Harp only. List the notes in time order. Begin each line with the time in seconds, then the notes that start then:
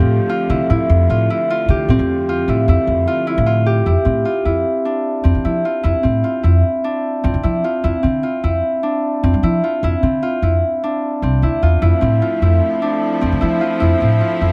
Already playing: C4 F4 G4
0.29 F4
0.50 E4
0.70 E4
1.10 F4
1.30 E4
1.50 F4
1.70 G4
1.90 C4
2.29 F4
2.49 E4
2.69 E4
3.07 F4
3.27 E4
3.46 F4
3.66 G4
3.86 E4
4.05 C4
4.25 F4
4.45 E4
4.85 D4
5.24 C4
5.45 E4
5.65 F4
5.83 E4
6.03 C4
6.24 F4
6.43 E4
6.84 D4
7.24 C4
7.43 E4
7.64 F4
7.84 E4
8.03 C4
8.23 F4
8.44 E4
8.83 D4
9.23 C4
9.43 E4
9.64 F4
9.84 E4
10.03 C4
10.23 F4
10.43 E4
10.83 D4
11.23 C4
11.43 E4
11.63 F4
11.82 E4
12.01 C4
12.22 F4
12.42 E4
12.82 D4
13.21 C4
13.41 E4
13.61 F4
13.80 E4
14.00 C4
14.21 F4
14.41 E4